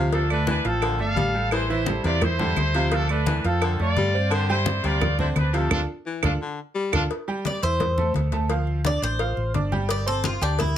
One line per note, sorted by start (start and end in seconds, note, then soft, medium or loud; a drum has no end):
0.00 0.58 D2 medium
0.00 0.24 C3 medium
0.12 0.26 F3 medium
0.12 0.29 D4 medium
0.12 0.26 F4 medium
0.12 0.29 A4 loud
0.12 0.27 F5 medium
0.12 cowbell loud
0.12 high conga soft
0.30 0.59 A3 medium
0.30 0.47 D4 medium
0.30 0.59 A4 medium
0.30 0.46 B4 loud
0.30 0.59 D5 medium
0.30 high conga soft
0.30 claves medium
0.47 0.66 E3 medium
0.47 0.65 D4 medium
0.47 0.64 B4 medium
0.47 cowbell medium
0.47 high conga medium
0.64 0.97 A1 medium
0.64 0.93 F3 medium
0.64 1.00 C4 medium
0.64 0.94 F4 medium
0.64 1.00 A4 loud
0.64 0.93 F5 medium
0.64 cowbell medium
0.82 1.01 D3 medium
0.82 cowbell loud
0.82 high conga soft
0.82 claves medium
0.99 1.15 G1 medium
0.99 1.28 A3 medium
0.99 1.28 A4 medium
0.99 1.49 A4 medium
0.99 1.28 D5 medium
0.99 1.49 F5 loud
0.99 high conga soft
1.16 1.98 A1 medium
1.16 1.35 G3 medium
1.16 cowbell medium
1.16 high conga medium
1.34 1.63 G3 medium
1.34 1.63 G4 medium
1.34 1.63 A4 medium
1.51 1.81 E3 medium
1.51 1.69 E4 medium
1.51 1.68 C5 loud
1.51 cowbell loud
1.51 high conga soft
1.51 claves medium
1.69 1.84 E3 loud
1.69 1.84 E4 loud
1.69 2.03 E4 medium
1.69 2.03 C5 loud
1.69 1.84 E5 loud
1.69 high conga soft
1.86 2.02 G3 medium
1.86 2.02 G4 medium
1.86 2.02 A4 medium
1.86 cowbell medium
1.86 high conga loud
2.04 2.53 E2 loud
2.04 2.22 C3 medium
2.04 2.33 E3 medium
2.04 2.34 E4 medium
2.04 2.21 F4 medium
2.04 2.21 D5 loud
2.04 2.34 E5 medium
2.04 cowbell medium
2.04 high conga soft
2.21 2.92 E4 medium
2.21 2.92 C5 loud
2.21 cowbell loud
2.21 high conga soft
2.21 low conga medium
2.21 claves medium
2.39 2.58 D3 medium
2.39 2.68 G3 medium
2.39 2.69 G4 medium
2.39 2.69 A4 medium
2.39 high conga soft
2.39 low conga medium
2.56 3.38 D2 medium
2.56 cowbell medium
2.56 high conga medium
2.56 claves medium
2.74 3.03 C3 medium
2.74 2.89 F3 medium
2.74 2.89 F4 medium
2.74 2.89 F5 medium
2.74 cowbell medium
2.92 3.06 F3 medium
2.92 3.10 D4 medium
2.92 3.06 F4 medium
2.92 3.10 A4 loud
2.92 3.06 F5 medium
2.92 cowbell loud
2.92 high conga soft
3.09 3.38 A3 medium
3.09 3.43 D4 medium
3.09 3.38 A4 medium
3.09 3.42 B4 medium
3.09 3.38 D5 medium
3.09 high conga soft
3.09 claves medium
3.27 3.45 E3 medium
3.27 cowbell medium
3.27 high conga loud
3.44 3.77 F2 loud
3.44 3.73 F3 medium
3.44 3.80 C4 medium
3.44 3.73 F4 medium
3.44 3.80 A4 loud
3.44 3.73 F5 medium
3.44 cowbell medium
3.62 3.80 D3 medium
3.62 cowbell loud
3.62 high conga soft
3.62 claves medium
3.79 3.95 F2 medium
3.79 4.08 A3 medium
3.79 4.29 F4 medium
3.79 4.08 A4 medium
3.79 4.09 D5 medium
3.79 4.29 D5 loud
3.79 high conga soft
3.96 4.79 G2 loud
3.96 4.16 G3 medium
3.96 cowbell medium
3.96 high conga medium
4.14 4.43 C4 medium
4.14 4.43 C5 medium
4.14 4.43 D5 medium
4.31 4.60 D3 loud
4.31 4.48 G4 medium
4.31 4.48 C5 loud
4.31 cowbell loud
4.31 high conga soft
4.31 claves medium
4.49 4.64 G3 loud
4.49 4.82 E4 medium
4.49 4.63 G4 loud
4.49 4.82 C5 loud
4.49 4.64 G5 loud
4.49 high conga soft
4.66 4.81 C4 medium
4.66 4.82 C5 medium
4.66 4.82 D5 medium
4.66 cowbell medium
4.66 high conga loud
4.83 5.32 D2 loud
4.83 5.02 C3 medium
4.83 5.13 G3 medium
4.83 5.20 F4 medium
4.83 5.13 G4 medium
4.83 5.19 D5 loud
4.83 5.13 G5 medium
4.83 cowbell medium
4.83 high conga soft
5.01 cowbell loud
5.01 high conga soft
5.01 low conga medium
5.01 claves medium
5.19 5.37 D3 medium
5.19 5.48 C4 medium
5.19 5.28 E4 medium
5.19 5.48 C5 medium
5.19 5.27 C5 medium
5.19 5.48 D5 medium
5.19 high conga soft
5.19 low conga medium
5.35 5.68 D2 loud
5.35 5.53 D4 medium
5.35 5.53 B4 medium
5.35 cowbell medium
5.35 high conga medium
5.35 claves medium
5.53 5.82 C3 medium
5.53 5.68 F3 medium
5.53 5.71 D4 medium
5.53 5.68 F4 medium
5.53 5.70 A4 medium
5.53 5.68 F5 medium
5.53 cowbell medium
5.71 5.84 D2 loud
5.71 5.82 D4 loud
5.71 5.80 D4 loud
5.71 5.82 F4 loud
5.71 5.80 F4 loud
5.71 5.82 A4 loud
5.71 5.80 A4 loud
5.71 cowbell medium
5.71 low conga loud
5.71 claves loud
6.06 6.25 E3 medium
6.23 6.36 D2 loud
6.23 6.34 D4 medium
6.23 6.32 D4 medium
6.23 6.34 F4 medium
6.23 6.32 F4 loud
6.23 6.34 A4 medium
6.23 6.32 A4 medium
6.23 cowbell medium
6.23 low conga loud
6.23 claves loud
6.42 6.60 D3 medium
6.75 6.93 G3 medium
6.92 7.06 D2 loud
6.92 7.04 D4 medium
6.92 7.02 D4 loud
6.92 7.04 F4 loud
6.92 7.02 F4 loud
6.92 7.04 A4 medium
6.92 7.02 A4 loud
6.92 cowbell medium
6.92 low conga loud
6.92 claves loud
7.11 cowbell medium
7.11 high conga soft
7.28 7.56 G3 medium
7.28 7.56 G4 medium
7.28 7.57 G5 medium
7.28 high conga soft
7.45 7.63 D5 medium
7.45 cowbell medium
7.45 high conga medium
7.62 8.11 E2 medium
7.62 7.91 E4 medium
7.62 8.12 C5 medium
7.62 7.91 E5 medium
7.62 7.91 E6 medium
7.62 cowbell medium
7.62 high conga soft
7.80 cowbell loud
7.80 high conga soft
7.80 low conga medium
7.98 8.26 A3 medium
7.98 8.26 A4 medium
7.98 8.27 A5 medium
7.98 high conga soft
7.98 low conga medium
8.14 8.96 D2 medium
8.14 cowbell medium
8.14 high conga medium
8.32 8.47 A3 medium
8.32 8.47 A4 medium
8.32 8.47 A5 medium
8.32 cowbell medium
8.32 high conga medium
8.49 8.79 F3 medium
8.49 8.79 F4 medium
8.49 8.79 F5 medium
8.49 cowbell loud
8.49 high conga soft
8.67 high conga soft
8.85 9.14 D4 medium
8.85 9.14 D5 medium
8.85 9.03 D5 medium
8.85 9.14 D6 medium
8.85 cowbell medium
8.85 high conga medium
9.02 9.34 A1 medium
9.02 9.52 C5 loud
9.02 cowbell medium
9.19 9.48 F4 medium
9.19 9.48 F5 medium
9.19 9.48 F6 medium
9.19 cowbell loud
9.19 high conga soft
9.37 9.53 A1 medium
9.37 high conga soft
9.54 10.36 G1 medium
9.54 9.69 D4 medium
9.54 9.69 D5 medium
9.54 9.69 D6 medium
9.54 cowbell medium
9.54 high conga medium
9.72 10.00 G3 medium
9.72 10.01 G4 medium
9.72 10.01 G5 medium
9.72 high conga medium
9.89 10.07 D5 medium
9.89 cowbell loud
9.89 high conga soft
10.06 10.35 C4 medium
10.06 10.24 A4 loud
10.06 10.35 C5 medium
10.06 10.35 C6 medium
10.06 high conga soft
10.24 10.41 F4 medium
10.24 cowbell medium
10.24 high conga medium
10.41 10.78 D2 loud
10.41 10.59 D4 medium
10.41 10.70 G4 medium
10.41 10.70 G5 medium
10.41 10.71 G6 medium
10.41 cowbell medium
10.41 high conga soft
10.59 10.76 E4 medium
10.59 cowbell loud
10.59 high conga soft
10.59 low conga medium